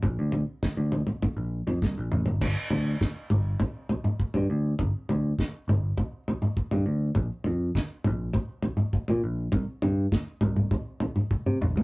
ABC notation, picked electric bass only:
X:1
M:4/4
L:1/16
Q:1/4=101
K:Gdor
V:1 name="Picked electric bass" clef=bass
B,,, D,,2 z2 D,,2 z2 B,,,2 F,, C,, B,,, A,,, G,,, | G,,, z D,,2 z2 G,,,2 z4 z G,, D,,2 | G,,, z D,,2 z2 G,,,2 z4 z G,, D,,2 | B,,, z F,,2 z2 B,,,2 z4 z B,, B,,,2 |
C,, z G,,2 z2 C,,2 z4 z C, B,,, C,, |]